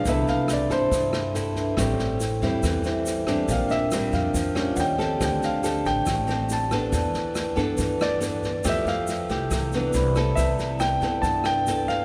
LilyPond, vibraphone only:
\new Staff \with { instrumentName = "Vibraphone" } { \time 4/4 \key c \major \tempo 4 = 140 << { r1 | r2 r8 e''8 g''8 a''8 | r1 | r1 |
r1 | r1 | r1 | } \\ { <d' a' e'' b''>2.~ <d' a' e'' b''>8 <d' a' b' e''>8 | <e' a' c'' g''>2.~ <e' a' c'' g''>8 <e' a' c'' g''>8 | <d' bes' c'' g''>2. <f' des'' ees'' g''>4 | <g' c'' d'' a''>1 |
<e' b' d'' a''>1 | <a' g'' e'''>2. <e' c'' d'' b''>4 | <e' b' d'' a''>2.~ <e' b' d'' a''>8 <e' b' d'' a''>8 | } >> }